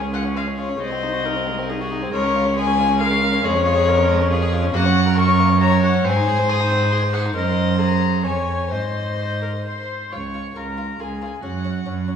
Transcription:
Already playing: cello C#2, viola G#4
0.02 violin C#4
0.13 violin F4 F#5
0.24 violin C#4
0.35 violin G#3 F5
0.47 violin C#4
0.58 violin F4 C#5
0.69 violin C#4
0.80 cello C2, violin G#3 D#5, viola C5
0.92 violin C4
1.03 violin D#4
1.14 violin F#4
1.25 violin D#4, viola A#4
1.36 violin C4
1.47 violin G#3
1.58 violin C4
1.70 violin D#4, viola G#4
1.81 violin F#4
1.91 violin D#4
2.02 violin C4
2.12 cello C#2, violin G#3 C#5, viola A#4
2.24 violin C#4
2.35 violin F4
2.45 violin C#4
2.56 violin G#3 G#5, viola G#4
2.67 violin C#4
2.78 violin F4
2.89 violin C#4
3.00 violin G#3 F5, viola A#4
3.11 violin C#4
3.21 violin F4
3.32 violin C#4
3.43 cello F2, violin G#3 C#5, viola G#4
3.55 violin C#4
3.65 violin F4
3.76 violin G#4
3.87 violin F4, viola A#4
3.98 violin C#4
4.09 violin G#3
4.20 violin C#4
4.31 violin F4, viola G#4
4.42 violin G#4
4.53 violin F4
4.64 violin C#4
4.74 cello F#2, violin A#3 F#5, viola F#4
4.85 violin C#4
4.96 violin F#4
5.06 violin A#4
5.17 violin F#4 C#6, viola A#4
5.28 violin C#4
5.39 violin A#3
5.49 violin C#4
5.61 violin F#4 A#5, viola C#5
5.72 violin A#4
5.83 violin F#4 F#5
5.95 violin C#4
6.05 cello G#2, violin C4 G#5, viola C5
6.17 violin D#4
6.28 violin G#4
6.39 violin C5
6.49 violin G#4 D#6
6.60 violin D#4
6.71 violin C4
6.82 violin D#4
6.91 violin G#4 C6
7.03 violin C5
7.13 violin G#4 F#5
7.25 violin D#4
7.35 cello F#2, viola A#4, violin C5 D#5
7.79 viola G#4, violin A#5
8.24 cello F2, viola C#5, violin C#5 G#5
8.71 cello G#2, violin C5 D#5, viola C5
9.19 viola C5
9.42 viola A#4
9.65 viola C5, violin C6
10.12 cello C#2, violin F4 C#6, viola C#5
10.34 violin F4
10.56 cello C#2, violin F4 A#5, viola A#4
10.78 violin F4
11.00 cello C#2, violin F4 G#5, viola G#4
11.22 violin F4
11.43 cello F#2, violin C#4 F#5, viola F#4
11.64 violin C#4
11.86 cello F#2, violin C#4
12.08 violin C#4

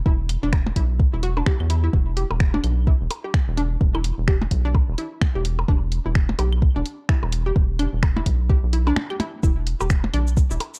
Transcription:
0.06 analog synth bass E1, synth arpeggio sound E4, kick
0.29 closed hi-hat, claves
0.43 analog synth bass E1, synth arpeggio sound D4
0.53 finger snap, kick, percussion blips
0.66 percussion blips
0.76 analog synth bass B1, synth arpeggio sound E4, kick, closed hi-hat
1.00 kick
1.13 analog synth bass E1, synth arpeggio sound E4
1.23 synth arpeggio sound F#4, closed hi-hat
1.37 synth arpeggio sound D4, percussion blips
1.46 synth arpeggio sound G4, finger snap, kick, percussion blips
1.60 analog synth bass E2, claves
1.70 synth arpeggio sound E4, closed hi-hat
1.84 synth arpeggio sound E4
1.93 analog synth bass E1, kick
2.17 synth arpeggio sound G4, closed hi-hat
2.31 analog synth bass E1, percussion blips
2.40 finger snap, kick
2.54 synth arpeggio sound D4, percussion blips
2.64 analog synth bass B1, closed hi-hat, claves
2.87 synth arpeggio sound E4, kick
3.01 analog synth bass E1
3.11 closed hi-hat, percussion blips
3.24 synth arpeggio sound G4
3.34 finger snap, kick
3.48 analog synth bass E1
3.57 synth arpeggio sound D4, closed hi-hat
3.81 analog synth bass E1, kick
3.95 synth arpeggio sound E4, claves, percussion blips
4.04 closed hi-hat
4.18 analog synth bass E1
4.28 synth arpeggio sound G4, finger snap, kick
4.42 percussion blips
4.51 analog synth bass B1, kick, closed hi-hat
4.65 synth arpeggio sound D4
4.75 kick, percussion blips
4.88 analog synth bass E1
4.98 synth arpeggio sound E4, closed hi-hat
5.21 finger snap, kick, percussion blips, claves
5.35 analog synth bass E1, synth arpeggio sound G4
5.45 closed hi-hat
5.59 percussion blips
5.68 analog synth bass E1, synth arpeggio sound D4, kick
5.92 closed hi-hat
6.06 analog synth bass E1, synth arpeggio sound E4
6.15 finger snap, kick
6.29 percussion blips
6.39 analog synth bass B1, synth arpeggio sound G4, closed hi-hat, percussion blips
6.53 claves
6.62 kick
6.76 analog synth bass E1, synth arpeggio sound D4
6.86 closed hi-hat
7.09 synth arpeggio sound E4, finger snap, kick
7.23 analog synth bass E1, percussion blips
7.32 closed hi-hat
7.46 synth arpeggio sound G4
7.56 analog synth bass E1, kick
7.79 synth arpeggio sound D4, closed hi-hat, claves
7.93 analog synth bass E1
8.03 finger snap, kick, percussion blips
8.17 synth arpeggio sound E4, percussion blips
8.26 analog synth bass B1, kick, closed hi-hat
8.50 synth arpeggio sound G4, kick
8.63 analog synth bass B1
8.73 synth arpeggio sound E4, closed hi-hat
8.87 synth arpeggio sound D4, percussion blips
8.96 finger snap, percussion blips
9.10 synth arpeggio sound G4, claves
9.20 synth arpeggio sound E4, closed hi-hat, percussion blips
9.43 analog synth bass E1, synth arpeggio sound E4, kick, cabasa
9.67 closed hi-hat
9.80 analog synth bass E1, synth arpeggio sound G4, cabasa, percussion blips
9.90 finger snap, kick, cabasa
10.04 percussion blips
10.14 analog synth bass B1, synth arpeggio sound D4, closed hi-hat, claves
10.27 cabasa
10.37 kick, cabasa
10.51 analog synth bass E1, synth arpeggio sound E4, cabasa
10.60 closed hi-hat, percussion blips
10.74 cabasa

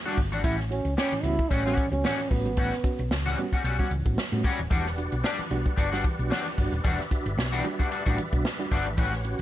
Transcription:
0.05 reed electric piano G3 D4 F#4, clean electric guitar G3 D4 F#4, closed hi-hat
0.18 fingered electric bass G1, kick, open hi-hat
0.32 fingered electric bass G#1, reed electric piano E3, clean electric guitar G3 D4 F#4, closed hi-hat
0.44 fingered electric bass A1, reed electric piano A2 E3, clean electric guitar G3 C#4 F#4, trombone E4, kick, closed hi-hat
0.60 snare
0.70 reed electric piano C#4 F#4, trombone C#4, closed hi-hat
0.85 fingered electric bass C#2, closed hi-hat
0.97 clean electric guitar G3 C#4 G4, trombone C#4, reed electric piano C#4 F#4, snare
1.12 reed electric piano A2 E3, muted fingered electric bass stroke, closed hi-hat
1.23 fingered electric bass C#2, reed electric piano G3 B3 C#4 F#4, trombone E4, closed hi-hat
1.39 kick, closed hi-hat
1.49 fingered electric bass A1, clean electric guitar G3 C#4 F#4, trombone C#4, kick, closed hi-hat
1.66 reed electric piano G3 B3 C#4 F#4, clean electric guitar G3 C#4 F#4, snare, closed hi-hat
1.77 reed electric piano A2 E3, kick, closed hi-hat
1.91 fingered electric bass C#2, reed electric piano G3 B3 C#4 F#4, trombone C#4, closed hi-hat
2.04 reed electric piano A2 E3, clean electric guitar G3 C#4 F#4, snare
2.20 closed hi-hat
2.30 fingered electric bass A1, reed electric piano G3 B3 C#4 F#4, trombone B3, kick, open hi-hat
2.45 fingered electric bass G#1, reed electric piano C#4 F#4, closed hi-hat
2.57 fingered electric bass A1, reed electric piano A2 E3, clean electric guitar G3 C#4 F#4, kick, closed hi-hat
2.72 snare
2.84 reed electric piano C#4 F#4, kick, closed hi-hat
2.99 fingered electric bass B1, closed hi-hat
3.11 fingered electric bass C#2, reed electric piano C#4 F#4, snare
3.26 reed electric piano A2 E3, clean electric guitar G3 C#4 F#4, closed hi-hat
3.37 reed electric piano G3 B3 C#4 F#4, closed hi-hat
3.53 clean electric guitar G3 C#4 F#4, kick, closed hi-hat
3.64 fingered electric bass B1, clean electric guitar G3 C#4 F#4, closed hi-hat
3.79 reed electric piano G3 B3 C#4 F#4, clean electric guitar G3 C#4 F#4, kick, closed hi-hat
3.91 fingered electric bass C#2, reed electric piano A2 E3, closed hi-hat
4.05 fingered electric bass A1, reed electric piano G3 B3 C#4 F#4, kick, closed hi-hat
4.18 snare
4.32 fingered electric bass A2, reed electric piano G3 B3 C#4 F#4, closed hi-hat
4.44 clean electric guitar G3 C#4 F#4, kick, open hi-hat
4.59 fingered electric bass D#1, reed electric piano A2 E3, closed hi-hat
4.70 fingered electric bass E1, reed electric piano E3, clean electric guitar G3 D4 F#4, tonewheel organ G4 B4 D5 F#5, kick, closed hi-hat
4.86 snare
4.98 reed electric piano D4 F#4, closed hi-hat
5.12 fingered electric bass B1, closed hi-hat
5.24 clean electric guitar G3 D4 G4, reed electric piano D4 F#4, snare
5.39 reed electric piano E3, muted fingered electric bass stroke, closed hi-hat
5.51 fingered electric bass B1, reed electric piano G3 D4 F#4, closed hi-hat
5.66 kick, closed hi-hat
5.76 fingered electric bass G1, clean electric guitar G3 D4 F#4, kick, closed hi-hat
5.92 reed electric piano G3 D4 F#4, clean electric guitar G3 D4 F#4, snare, closed hi-hat
6.04 reed electric piano E3, kick, closed hi-hat
6.19 fingered electric bass B1, reed electric piano G3 D4 F#4, closed hi-hat
6.30 reed electric piano E3, clean electric guitar G3 D4 F#4, snare
6.58 fingered electric bass G1, reed electric piano G3 D4 F#4, kick, open hi-hat
6.72 fingered electric bass D#1, reed electric piano D4 F#4, closed hi-hat
6.84 fingered electric bass E1, reed electric piano E3, clean electric guitar G3 D4 F#4, tonewheel organ E5, kick, closed hi-hat
7.00 snare, closed hi-hat
7.11 reed electric piano D4 F#4, kick, closed hi-hat
7.26 fingered electric bass G1, closed hi-hat
7.37 fingered electric bass B1, reed electric piano D4 F#4, snare
7.52 reed electric piano E3, clean electric guitar G3 D4 F#4, closed hi-hat
7.64 reed electric piano G3 D4 F#4, closed hi-hat
7.79 clean electric guitar G3 D4 F#4, kick, closed hi-hat
7.91 clean electric guitar G3 D4 F#4, closed hi-hat
8.06 fingered electric bass A1, reed electric piano G3 D4 F#4, clean electric guitar G3 D4 F#4, kick
8.18 reed electric piano E3, closed hi-hat
8.32 fingered electric bass B1, reed electric piano G3 D4 F#4, kick, closed hi-hat
8.45 snare
8.59 reed electric piano G3 D4 F#4, closed hi-hat
8.71 fingered electric bass G1, clean electric guitar G3 D4 F#4, kick, open hi-hat
8.86 fingered electric bass G#1, reed electric piano E3, closed hi-hat
8.97 fingered electric bass A1, reed electric piano A2 E3, clean electric guitar G3 C#4 F#4, tonewheel organ G4 C#5 F#5, kick, closed hi-hat
9.13 snare, closed hi-hat
9.25 reed electric piano C#4 F#4, closed hi-hat
9.39 closed hi-hat

